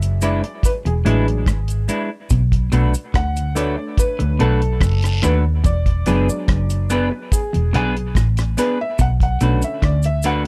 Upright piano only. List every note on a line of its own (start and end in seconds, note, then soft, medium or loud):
0.00 1.03 F#3 medium
0.00 1.03 G#3 medium
0.00 1.04 D4 medium
0.00 0.19 E5 medium
0.24 0.66 D5 medium
0.65 0.70 B4 medium
0.87 0.92 G#4 medium
1.04 1.43 F#3 soft
1.04 1.43 G#3 soft
1.04 1.43 D4 medium
1.04 1.86 G#4 medium
3.16 3.58 F#5 loud
3.55 5.61 A3 medium
3.55 5.60 D4 medium
3.55 5.61 C#5 medium
3.55 4.00 D5 medium
3.99 4.38 B4 loud
4.41 5.20 A4 loud
5.25 5.34 B4 medium
5.66 6.28 D5 loud
6.07 7.28 F#3 medium
6.07 7.28 G#3 soft
6.07 7.29 D4 medium
6.29 6.93 D5 medium
6.92 7.34 B4 medium
7.33 7.71 G#4 medium
7.74 8.13 G#4 medium
8.59 8.78 B4 medium
8.81 9.01 E5 loud
9.01 9.06 F#5 loud
9.23 9.65 F#5 medium
9.41 9.97 D3 medium
9.41 9.97 A3 soft
9.41 9.98 C#4 medium
9.64 9.84 E5 medium
9.84 10.04 D5 medium
10.06 10.25 E5 loud
10.26 10.31 F#5 loud